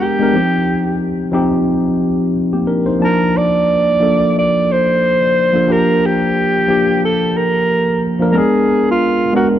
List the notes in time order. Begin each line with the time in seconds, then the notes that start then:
Already playing: G#3 B3 D4 A#4
0.02 G4
0.19 G#3 B3 D4 A#4
0.33 F3 C4 D#4 G4
1.32 F3 C4 D#4 G4
2.53 A#3 G4
2.67 D4 A#4
2.86 D#4 C5
2.99 F3 A#3 D4 A5
3.04 A#4
3.37 D5
4.00 F3 A#3 D4 A4
4.39 D5
4.73 C5
5.53 F3 A#3 D4 A4
5.67 F3 A#3 D4 G4
5.72 A#4
6.06 G4
6.68 F3 A#3 D4 G4
7.05 A4
7.37 A#4
8.19 F3 A#3 D4 A#4
8.32 G#3 B3 D4 A#4
8.38 G#4
8.91 F4
9.33 G#3 B3 D4 F#4 A#4